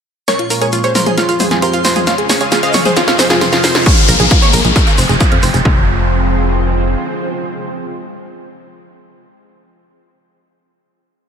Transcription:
0.28 analog synth pad A#2 F3 G#3 C#4, synth pluck A#4 C#5, supersaw synth C#5, synth arpeggio sound C#5, synth bell C#5 C#6, snare, closed hi-hat, riser, shaker
0.39 synth pluck F4, supersaw synth F4, closed hi-hat
0.50 synth pluck F4, supersaw synth F4, synth arpeggio sound A#4, open hi-hat, shaker
0.61 synth arpeggio sound G#4, synth pluck A#4 C#5, supersaw synth C#5, closed hi-hat, shaker
0.72 supersaw synth F4, synth pluck F4, synth arpeggio sound F4, closed hi-hat, shaker
0.84 synth pluck G#4 C5, supersaw synth C5, synth arpeggio sound C#5, closed hi-hat, shaker
0.95 supersaw synth F4, synth pluck F4, synth arpeggio sound A#4, synth bell C5 C6, snare, open hi-hat, mid tom, shaker
1.06 synth pluck F4 G#4, synth arpeggio sound G#4, supersaw synth G#4, closed hi-hat, mid tom, shaker
1.17 analog synth pad F2 F3 G#3 C4, supersaw synth F4, synth arpeggio sound F4, synth pluck F4, snare, closed hi-hat, shaker
1.29 supersaw synth F4, synth pluck F4, synth arpeggio sound F5, closed hi-hat, shaker
1.40 synth pluck F4 G#4, supersaw synth G#4, synth arpeggio sound C5, open hi-hat, mid tom, shaker
1.51 supersaw synth F4, synth pluck F4, synth arpeggio sound G#4, snare, closed hi-hat, shaker
1.62 synth arpeggio sound F4, synth pluck G4 A#4, supersaw synth A#4, synth bell C5 C6, closed hi-hat, shaker
1.73 supersaw synth F4, synth pluck F4, synth arpeggio sound F5, closed hi-hat, shaker
1.85 supersaw synth F4, synth pluck F4, synth arpeggio sound C5, snare, open hi-hat, shaker
1.96 supersaw synth F4, synth pluck F4, synth arpeggio sound G#4, closed hi-hat, mid tom, shaker
2.07 analog synth pad C#2 C#3 F4 G#4, synth pluck C#5 F5, supersaw synth F5, synth arpeggio sound F5, snare, closed hi-hat, shaker
2.18 supersaw synth G#4, synth pluck G#4, closed hi-hat
2.29 supersaw synth G#4, synth pluck G#4, synth arpeggio sound C#5, snare, open hi-hat, shaker
2.40 synth arpeggio sound G#4, synth pluck C#5 F5, supersaw synth F5, closed hi-hat, shaker
2.52 synth arpeggio sound F4, supersaw synth G#4, synth pluck G#4, snare, closed hi-hat, shaker
2.63 synth pluck C5 D#5, supersaw synth D#5, synth arpeggio sound F5, closed hi-hat, shaker
2.73 synth pluck G#4, supersaw synth G#4, synth arpeggio sound C#5, snare, open hi-hat, mid tom, shaker
2.85 synth pluck G#4 C5, synth arpeggio sound G#4, supersaw synth C5, closed hi-hat, mid tom, shaker
2.96 analog synth pad F2 C3 C5, synth pluck F4, synth arpeggio sound F4, supersaw synth F4, snare, closed hi-hat, shaker
3.08 synth pluck F4, supersaw synth F4, synth arpeggio sound F5, snare, closed hi-hat, shaker
3.19 synth pluck G#4 C5, supersaw synth C5, synth arpeggio sound C5, snare, open hi-hat, shaker
3.30 synth pluck F4, supersaw synth F4, synth arpeggio sound G#4, snare, closed hi-hat, shaker
3.41 synth arpeggio sound F4, synth pluck G#4 C5, supersaw synth C5, snare, closed hi-hat, mid tom, shaker
3.52 synth pluck F4, supersaw synth F4, synth arpeggio sound F5, snare, closed hi-hat, shaker
3.64 supersaw synth F4, synth pluck F4, synth arpeggio sound C5, snare, open hi-hat, shaker
3.75 supersaw synth F4, synth pluck F4, synth arpeggio sound G#4, snare, closed hi-hat
3.86 analog synth pad C#3 G#3 A#3, synth arpeggio sound C#5, kick, closed hi-hat, downlifter, shaker
3.97 closed hi-hat
4.08 fm bass A#1, synth arpeggio sound A#4, open hi-hat, shaker
4.20 fm bass A#1, synth arpeggio sound G#4, closed hi-hat, shaker
4.30 synth arpeggio sound F4, kick, closed hi-hat, shaker
4.42 synth arpeggio sound C#5, closed hi-hat, shaker
4.53 fm bass A#1, synth arpeggio sound A#4, open hi-hat, shaker
4.64 fm bass A#1, synth arpeggio sound G#4, closed hi-hat, shaker
4.76 analog synth pad F3 C4, synth arpeggio sound F4, kick, closed hi-hat, shaker
4.87 synth arpeggio sound F5, closed hi-hat, shaker
4.98 fm bass F1, synth arpeggio sound C5, open hi-hat, shaker
5.09 fm bass F1, synth arpeggio sound G#4, closed hi-hat, shaker
5.20 synth arpeggio sound F4, kick, closed hi-hat, shaker
5.32 fm bass F2, synth arpeggio sound F5, closed hi-hat
5.43 fm bass F1, synth arpeggio sound C5, open hi-hat, shaker
5.54 fm bass F1, synth arpeggio sound G#4, closed hi-hat, shaker
5.65 fm bass F1, analog synth pad F3 G#3 C4, synth arpeggio sound F4, kick

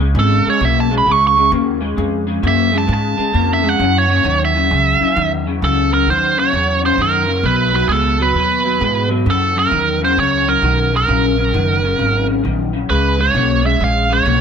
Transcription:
Already playing: upright bass C#2
0.00 clean electric guitar C#3 G#3
0.15 upright bass G#1, clean electric guitar C#3 G#3
0.19 lead electric guitar A4
0.45 clean electric guitar C#3 G#3, muted upright bass stroke
0.50 lead electric guitar C#5
0.61 upright bass B1, clean electric guitar C#3 A#3
0.65 lead electric guitar E5
0.80 lead electric guitar A5
0.91 clean electric guitar C#3 G#3
0.98 lead electric guitar B5
1.06 upright bass C#2, clean electric guitar C#3 G#3
1.11 lead electric guitar C#6
1.27 lead electric guitar C#6
1.37 clean electric guitar C#3 G#3
1.52 upright bass D#2, clean electric guitar C#3 A#3
1.81 clean electric guitar C#3 G#3
1.96 upright bass F2, clean electric guitar C#3 G#3
2.27 clean electric guitar C#3 G#3
2.43 upright bass F#2, clean electric guitar C#3 A#3
2.47 lead electric guitar E5
2.72 clean electric guitar C#3 G#3
2.78 lead electric guitar A5
2.87 upright bass G#2, clean electric guitar C#3 G#3
2.93 lead electric guitar A5
3.17 clean electric guitar C#3 G#3, muted upright bass stroke
3.33 upright bass F2, clean electric guitar C#3 A#3
3.53 lead electric guitar E5
3.62 clean electric guitar C#3 G#3
3.69 lead electric guitar F#5
3.78 clean electric guitar F#2 C#3, upright bass F#2
3.98 lead electric guitar C#5
4.08 clean electric guitar F#2 C#3
4.24 upright bass D#2, clean electric guitar F#2 D#3
4.45 lead electric guitar E5
4.54 clean electric guitar F#2 C#3
4.69 upright bass C#2, clean electric guitar F#2 C#3
5.00 clean electric guitar F#2 C#3, muted upright bass stroke
5.16 upright bass E2, clean electric guitar F#2 D#3
5.46 clean electric guitar F#2 C#3
5.62 upright bass C#2, clean electric guitar F#2 C#3, lead electric guitar A4
5.91 clean electric guitar F#2 C#3, lead electric guitar A#4
6.07 upright bass D#2, clean electric guitar F#2 D#3, lead electric guitar C5
6.37 clean electric guitar F#2 C#3, lead electric guitar C#5
6.53 upright bass E2, clean electric guitar F#2 C#3
6.83 clean electric guitar F#2 C#3, lead electric guitar C5
6.98 upright bass F#2, clean electric guitar F#2 D#3, lead electric guitar A#4
7.27 clean electric guitar F#2 C#3
7.43 upright bass B1, clean electric guitar B2 F#3, lead electric guitar B4
7.73 clean electric guitar B2 F#3, lead electric guitar B4
7.88 upright bass C#2, clean electric guitar B2 G#3, lead electric guitar G#4 A4
8.20 clean electric guitar B2 F#3, lead electric guitar B4
8.34 upright bass D#2, clean electric guitar B2 F#3
8.64 clean electric guitar B2 F#3
8.81 upright bass G#2, clean electric guitar B2 G#3
9.09 clean electric guitar B2 F#3
9.26 clean electric guitar F#2 C#3, upright bass F#2
9.30 lead electric guitar A4
9.55 clean electric guitar F#2 C#3, lead electric guitar A#4
9.71 upright bass E2, clean electric guitar F#2 D#3
10.01 clean electric guitar F#2 C#3, lead electric guitar C5
10.17 upright bass C#2, clean electric guitar F#2 C#3, lead electric guitar C#5
10.47 clean electric guitar F#2 C#3, lead electric guitar A#4
10.62 upright bass B1, clean electric guitar F#2 D#3
10.92 clean electric guitar F#2 C#3
10.96 lead electric guitar A#4
11.08 upright bass A#1, clean electric guitar F#2 C#3
11.38 clean electric guitar F#2 C#3
11.53 upright bass F#1, clean electric guitar F#2 D#3
11.83 clean electric guitar F#2 C#3
11.98 upright bass G#1, clean electric guitar F#2 C#3
12.27 clean electric guitar F#2 C#3
12.43 upright bass A#1, clean electric guitar F#2 D#3
12.73 clean electric guitar F#2 C#3
12.89 upright bass C#2, clean electric guitar C#3 G#3, lead electric guitar B4
13.18 clean electric guitar C#3 G#3, lead electric guitar C#5
13.34 upright bass B1, clean electric guitar C#3 A#3
13.63 clean electric guitar C#3 G#3, lead electric guitar E5
13.80 upright bass A#1, clean electric guitar C#3 G#3, lead electric guitar F5
14.10 clean electric guitar C#3 G#3, lead electric guitar C#5
14.25 upright bass B1, clean electric guitar C#3 A#3

